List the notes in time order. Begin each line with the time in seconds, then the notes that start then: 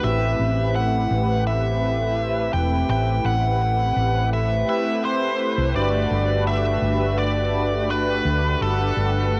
0.01 A1 A3 C4 E4 G4 B4 E5
0.39 A1
0.76 F#5
1.11 A1
1.47 E5
2.18 A3 C4 E4 G4 B4
2.53 E1 G5
2.88 A1 A3 C4 E4 G4 B4 G5
3.25 A1 F#5
3.96 A1
4.33 E5
4.67 A3 C4 E4 G4 B4 E5
5.03 A3 C4 E4 G4 C5
5.58 C2
5.74 G1 A3 D4 F#4 G4 B4 D5
6.11 G1
6.47 E5
6.82 G1
7.18 D5
7.89 A3 D4 F#4 G4 B4
8.25 D2
8.60 G1 A3 D4 G4 A4 B4 F#5
8.97 G1